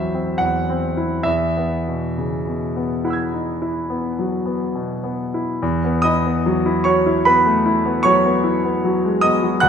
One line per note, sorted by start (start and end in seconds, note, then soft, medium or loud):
0.00 1.21 A1 soft
0.00 0.40 E2 soft
0.00 1.29 F#2 soft
0.00 0.30 F#3 soft
0.00 0.14 C4 soft
0.00 1.29 D#4 soft
0.00 0.97 E4 soft
0.00 1.29 C5 medium
0.00 1.29 D#5 medium
0.00 0.40 E5 medium
0.14 0.58 C4 soft
0.38 0.85 E2 soft
0.38 1.24 F#5 medium
0.70 1.15 C4 soft
0.97 1.26 E4 soft
1.23 5.57 E2 soft
1.23 5.16 E5 medium
1.57 2.05 B3 soft
1.88 2.35 B2 soft
2.18 2.47 C#3 soft
2.47 2.93 B2 soft
2.76 3.21 B3 soft
3.04 3.50 E4 soft
3.04 5.58 F#5 soft
3.04 5.59 B5 soft
3.10 5.61 E6 soft
3.10 5.62 G#6 soft
3.34 3.61 D#4 soft
3.62 4.06 E4 soft
3.90 4.34 B3 soft
4.19 4.63 F#3 soft
4.46 4.91 B3 soft
4.75 5.21 B2 soft
5.04 5.50 B3 soft
5.34 5.62 E4 soft
5.62 9.58 E2 medium
5.84 6.17 B3 soft
6.02 6.37 E4 soft
6.02 6.81 D#5 medium
6.02 6.84 D#6 medium
6.26 6.58 B3 soft
6.46 6.78 F#3 soft
6.66 6.97 E4 soft
6.84 7.05 F#4 soft
6.84 7.22 C#5 medium
6.84 7.24 C#6 medium
7.06 7.37 E4 soft
7.25 7.58 B3 soft
7.25 8.00 B4 medium
7.25 8.04 B5 medium
7.46 7.65 A3 soft
7.66 7.96 E4 soft
7.86 8.16 B3 soft
8.03 8.36 F#3 soft
8.03 9.19 C#5 medium
8.03 9.22 C#6 medium
8.25 8.55 B3 soft
8.44 8.75 E4 soft
8.64 8.95 B3 soft
8.85 9.15 F#3 soft
9.04 9.23 G#3 soft
9.21 9.54 B3 soft
9.21 9.59 D#5 medium
9.21 9.61 D#6 medium
9.43 9.62 F#3 soft
9.60 9.69 D2 medium
9.60 9.69 F#5 medium
9.60 9.69 F#6 medium